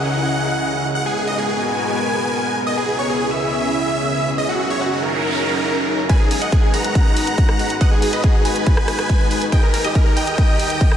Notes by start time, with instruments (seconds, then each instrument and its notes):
Already playing: analog synth pad C#3 C#4 E4 G#4 D#5, supersaw synth F#5
0.95 analog synth pad G#3 B3 F#4 A#4 B4, supersaw synth F#5
1.06 supersaw synth G#4
1.17 supersaw synth G#4
1.27 supersaw synth D#5
1.38 supersaw synth G#4
1.49 supersaw synth G#4
1.59 supersaw synth G#5
2.67 analog synth pad C#3 C#4 E4 G#4, supersaw synth D#5
2.77 supersaw synth G#4
2.88 supersaw synth G#4
2.99 supersaw synth C#5
3.10 supersaw synth G#4
3.20 supersaw synth G#4
3.31 supersaw synth E5
4.38 analog synth pad F#3 C#4 D#4 A#4, supersaw synth D#5, noise sweep
4.49 supersaw synth F#4
4.60 supersaw synth F#4
4.70 supersaw synth C#5
4.81 supersaw synth F#4
4.92 supersaw synth F#4
5.02 supersaw synth A#4
6.09 analog synth pad G#3 D#4 F#4 B4, supersaw synth B4 G#5, synth pluck G#5, kick, closed hi-hat
6.20 synth pluck G#4, supersaw synth G#4
6.31 synth pluck G#4, supersaw synth G#4, open hi-hat
6.42 supersaw synth D#5 F#5, synth pluck F#5, closed hi-hat
6.52 synth pluck G#4, supersaw synth G#4, kick, closed hi-hat
6.63 supersaw synth G#4, synth pluck G#4
6.74 supersaw synth F#5 A#5, synth pluck A#5, open hi-hat
6.84 closed hi-hat
6.95 kick, closed hi-hat
7.17 open hi-hat
7.27 closed hi-hat
7.38 kick, closed hi-hat
7.49 cross-stick
7.59 open hi-hat
7.70 closed hi-hat
7.81 supersaw synth D#5 F#5, synth pluck F#5, kick, closed hi-hat
7.92 synth pluck G#4, supersaw synth G#4
8.02 synth pluck G#4, supersaw synth G#4, open hi-hat
8.13 supersaw synth B4 D#5, synth pluck D#5, closed hi-hat
8.24 synth pluck G#4, supersaw synth G#4, kick, closed hi-hat
8.34 synth pluck G#4, supersaw synth G#4
8.45 supersaw synth B4 G#5, synth pluck G#5, open hi-hat
8.56 closed hi-hat
8.66 kick, closed hi-hat
8.77 cross-stick
8.88 cross-stick, open hi-hat
8.99 cross-stick, closed hi-hat
9.09 kick, closed hi-hat
9.31 open hi-hat
9.42 closed hi-hat
9.52 analog synth pad D#3 G4 A#5, supersaw synth D#5 G5, synth pluck G5, kick, closed hi-hat
9.63 synth pluck A#4, supersaw synth A#4
9.74 supersaw synth A#4, synth pluck A#4, open hi-hat
9.84 supersaw synth G4 D#5, synth pluck D#5, closed hi-hat
9.95 supersaw synth A#4, synth pluck A#4, kick, closed hi-hat
10.06 supersaw synth A#4, synth pluck A#4
10.17 supersaw synth D#5 G5, synth pluck G5, open hi-hat
10.27 closed hi-hat
10.38 kick, closed hi-hat
10.59 open hi-hat
10.70 closed hi-hat
10.81 kick, closed hi-hat
10.92 cross-stick